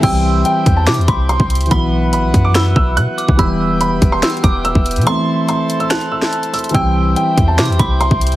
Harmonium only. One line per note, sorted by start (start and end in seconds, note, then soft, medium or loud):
0.03 5.03 E4 medium
0.03 1.69 G4 medium
0.03 1.69 C5 medium
0.03 1.69 G5 medium
1.71 5.03 B3 medium
1.71 3.37 F#4 medium
1.71 3.37 F#5 medium
3.39 5.05 G4 medium
3.39 5.05 G5 medium
5.07 8.36 E4 medium
5.07 6.73 A4 medium
5.07 6.73 C5 medium
5.07 6.73 A5 medium
6.75 8.36 G4 medium
6.75 8.36 C5 medium
6.75 8.36 G5 medium